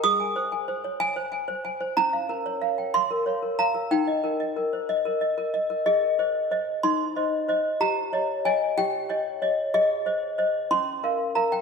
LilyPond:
\new Staff \with { instrumentName = "Toy piano" } { \time 6/8 \key aes \major \tempo 4. = 62 << { ees'''4. aes''4. | bes''4. c'''4 bes''8 | g''4. r4. | ees''4. c'''4. |
bes''4 aes''8 g''4. | ees''4. c'''4 bes''16 g''16 | } \\ { aes'16 aes''16 c''16 aes''16 c''16 des''16 r16 c''16 aes''16 c''16 aes''16 c''16 | des'16 f''16 bes'16 des''16 f''16 g''16 f''16 bes'16 des''16 bes'16 f''16 bes'16 | ees'16 ees''16 bes'16 ees''16 bes'16 c''16 ees''16 bes'16 ees''16 bes'16 ees''16 bes'16 | aes'8 <c'' ees''>8 <c'' ees''>8 ees'8 <c'' ees''>8 <c'' ees''>8 |
g'8 <des'' ees''>8 <des'' ees''>8 g'8 <des'' ees''>8 <des'' ees''>8 | aes'8 <c'' ees''>8 <c'' ees''>8 des'8 <bes' f''>8 <bes' f''>8 | } >> }